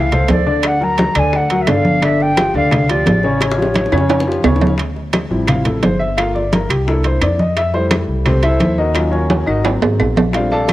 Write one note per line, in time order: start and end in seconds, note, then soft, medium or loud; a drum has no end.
0.00 0.26 C2 medium
0.00 0.30 F5 medium
0.12 0.40 A3 medium
0.12 0.41 A4 medium
0.12 0.41 C5 medium
0.12 high bongo soft
0.12 high conga soft
0.12 low conga medium
0.12 high timbale medium
0.28 1.10 D2 medium
0.28 0.68 D5 medium
0.28 high bongo soft
0.28 low bongo medium
0.28 high conga medium
0.28 high timbale medium
0.28 low timbale medium
0.46 0.75 D3 medium
0.46 0.75 D4 medium
0.46 0.75 D5 medium
0.46 high bongo soft
0.46 high conga soft
0.63 0.85 F#5 medium
0.63 high bongo medium
0.63 high conga soft
0.63 high timbale medium
0.63 claves medium
0.81 1.09 F#3 medium
0.81 1.09 F#4 medium
0.81 1.09 A#4 medium
0.81 1.20 A#5 loud
0.81 high bongo soft
0.81 high conga soft
0.98 high bongo medium
0.98 high conga loud
0.98 high timbale medium
1.15 1.64 D2 medium
1.15 1.44 D3 medium
1.15 1.44 D4 medium
1.15 1.44 D5 medium
1.15 1.37 G#5 loud
1.15 high timbale medium
1.15 claves medium
1.33 1.63 F#5 medium
1.33 high bongo medium
1.33 high conga soft
1.50 1.65 F#3 medium
1.50 1.65 F#4 medium
1.50 1.65 A#4 medium
1.50 high bongo soft
1.50 high conga soft
1.50 high timbale medium
1.62 1.71 E5 medium
1.67 2.49 G1 medium
1.67 1.96 D3 medium
1.67 1.96 D4 medium
1.67 1.97 D5 medium
1.67 2.05 F5 loud
1.67 high bongo soft
1.67 low bongo medium
1.67 high conga soft
1.67 high timbale medium
1.67 low timbale medium
1.67 claves medium
1.85 high bongo soft
1.85 high conga medium
2.02 2.30 D3 medium
2.02 2.31 D4 medium
2.02 2.31 D5 medium
2.02 2.23 E5 medium
2.02 high bongo medium
2.02 high conga soft
2.02 high timbale medium
2.20 2.55 G5 loud
2.20 high bongo soft
2.20 high conga soft
2.37 2.51 F3 medium
2.37 2.51 F4 medium
2.37 2.51 G4 medium
2.37 high bongo medium
2.37 high conga loud
2.37 high timbale medium
2.37 claves medium
2.54 3.02 D2 medium
2.54 2.83 D3 medium
2.54 2.83 D4 medium
2.54 2.84 D5 medium
2.54 2.92 F5 loud
2.54 high conga soft
2.71 high bongo medium
2.71 high conga soft
2.71 low conga medium
2.71 high timbale loud
2.71 claves medium
2.89 3.17 F3 medium
2.89 3.17 F4 medium
2.89 3.18 G4 medium
2.89 3.41 D5 medium
2.89 high bongo soft
2.89 high conga soft
2.89 high timbale medium
3.06 3.87 A1 medium
3.06 high bongo soft
3.06 low bongo medium
3.06 high conga medium
3.06 high timbale medium
3.06 low timbale medium
3.23 3.52 C#3 medium
3.23 3.52 C#4 medium
3.23 3.52 C#5 medium
3.23 high bongo soft
3.23 high conga soft
3.41 4.41 C#5 medium
3.41 high bongo loud
3.41 high conga soft
3.41 high timbale medium
3.41 claves medium
3.51 high bongo loud
3.57 3.86 F3 medium
3.57 3.86 F4 medium
3.57 3.86 G4 medium
3.57 high conga soft
3.62 high bongo medium
3.74 low bongo medium
3.74 high conga medium
3.74 high timbale medium
3.86 low bongo medium
3.92 4.41 F2 medium
3.92 4.21 C#3 medium
3.92 4.21 C#4 medium
3.92 4.21 C#5 medium
3.92 high conga soft
3.92 high timbale medium
3.92 claves medium
3.98 high bongo medium
4.09 low bongo medium
4.09 high conga soft
4.09 high timbale loud
4.20 low bongo loud
4.27 4.41 F3 medium
4.27 4.41 F4 medium
4.27 4.41 G4 medium
4.27 high conga soft
4.32 low bongo medium
4.44 5.25 D2 medium
4.44 4.73 C#3 medium
4.44 4.73 C#4 medium
4.44 4.73 C#5 medium
4.44 low bongo medium
4.44 high conga soft
4.44 low timbale medium
4.44 claves medium
4.56 low bongo loud
4.61 high conga medium
4.61 low timbale medium
4.67 low bongo medium
4.78 high bongo medium
4.78 high conga soft
4.78 high timbale medium
4.96 high bongo soft
4.96 high conga soft
5.13 high bongo medium
5.13 high conga medium
5.13 high timbale medium
5.13 claves medium
5.30 5.79 A1 medium
5.30 5.80 F3 medium
5.30 5.80 G3 soft
5.30 5.81 C4 medium
5.30 5.81 E4 medium
5.30 high conga soft
5.47 5.65 F5 medium
5.47 high bongo medium
5.47 high conga soft
5.47 low conga medium
5.47 high timbale medium
5.47 claves medium
5.65 5.82 A4 medium
5.65 high bongo soft
5.65 high conga soft
5.65 low conga medium
5.65 high timbale medium
5.83 6.64 G1 medium
5.83 6.00 C5 medium
5.83 high bongo soft
5.83 low bongo medium
5.83 high conga medium
5.83 high timbale medium
5.83 low timbale medium
5.99 6.17 E5 medium
5.99 high bongo soft
5.99 high conga soft
6.17 6.40 A3 medium
6.17 6.40 A#3 soft
6.17 6.41 F4 medium
6.17 6.34 F5 medium
6.17 high bongo medium
6.17 high conga soft
6.17 high timbale loud
6.17 claves medium
6.35 6.52 D5 medium
6.35 high bongo soft
6.35 high conga soft
6.53 6.69 A#4 medium
6.53 high bongo medium
6.53 high conga loud
6.53 high timbale medium
6.69 7.18 C2 medium
6.69 6.87 G4 medium
6.69 high conga soft
6.69 high timbale medium
6.69 claves medium
6.87 7.36 A#3 medium
6.87 7.37 D4 soft
6.87 7.37 E4 medium
6.87 7.04 A4 medium
6.87 high bongo medium
6.87 high conga soft
7.04 7.22 C5 medium
7.04 high bongo soft
7.04 high conga soft
7.04 high timbale medium
7.21 8.03 F2 medium
7.21 7.39 D5 medium
7.21 high bongo soft
7.21 low bongo medium
7.21 high conga soft
7.21 high timbale medium
7.21 claves medium
7.39 7.56 D#5 medium
7.39 high bongo soft
7.39 high conga medium
7.57 7.74 E5 medium
7.57 high bongo medium
7.57 high conga soft
7.57 high timbale medium
7.74 8.23 G3 medium
7.74 8.23 A3 medium
7.74 8.24 E4 medium
7.74 7.85 C5 medium
7.74 high bongo soft
7.74 high conga soft
7.91 high bongo medium
7.91 high conga medium
7.91 high timbale medium
7.91 claves medium
8.08 8.57 C2 medium
8.08 high conga soft
8.26 8.43 C4 medium
8.26 8.43 G4 medium
8.26 8.42 A4 medium
8.26 8.42 C5 medium
8.26 high bongo medium
8.26 high conga soft
8.26 low conga medium
8.26 high timbale medium
8.26 claves medium
8.43 8.76 E4 medium
8.43 8.76 A4 medium
8.43 8.76 C5 medium
8.43 8.76 E5 loud
8.43 high bongo soft
8.43 high conga soft
8.43 high timbale medium
8.60 9.42 D#2 medium
8.60 high bongo soft
8.60 low bongo medium
8.60 high conga medium
8.60 high timbale medium
8.78 9.11 D#4 medium
8.78 9.10 F#4 medium
8.78 9.11 A#4 medium
8.78 9.10 D#5 medium
8.78 high bongo soft
8.78 high conga soft
8.95 9.18 F#3 medium
8.95 9.11 C#4 medium
8.95 9.19 F4 medium
8.95 high bongo medium
8.95 high conga soft
8.95 high timbale medium
8.95 claves medium
9.12 9.45 C#4 medium
9.12 9.45 F#4 medium
9.12 9.45 A#4 medium
9.12 9.44 C#5 medium
9.12 high bongo soft
9.12 high conga soft
9.30 high bongo medium
9.30 high conga loud
9.30 high timbale medium
9.46 9.80 G#1 medium
9.46 9.64 D#4 medium
9.46 9.64 F#4 medium
9.46 9.64 A#4 medium
9.46 9.64 D#5 medium
9.46 high conga soft
9.46 claves medium
9.63 10.13 F#3 medium
9.63 10.14 A#3 soft
9.63 10.14 C4 medium
9.63 high bongo medium
9.63 high conga soft
9.63 high timbale medium
9.82 9.98 G#1 medium
9.82 high bongo soft
9.82 high conga soft
9.82 low timbale medium
9.99 10.73 A#1 medium
9.99 high bongo soft
9.99 low bongo medium
9.99 high conga soft
9.99 low timbale medium
9.99 claves medium
10.16 high bongo soft
10.16 high conga medium
10.16 low timbale loud
10.33 10.73 G3 medium
10.33 10.73 A3 medium
10.33 10.73 C4 medium
10.33 10.73 D4 medium
10.33 10.51 F4 medium
10.33 10.52 C5 medium
10.33 10.50 D5 medium
10.33 10.50 F5 medium
10.33 high bongo medium
10.33 high timbale medium
10.51 10.73 A4 medium
10.51 10.73 D5 medium
10.51 10.73 F5 medium
10.51 10.73 A5 loud
10.51 high bongo soft
10.51 high conga soft
10.68 high bongo medium
10.68 high conga medium
10.68 high timbale medium
10.68 claves medium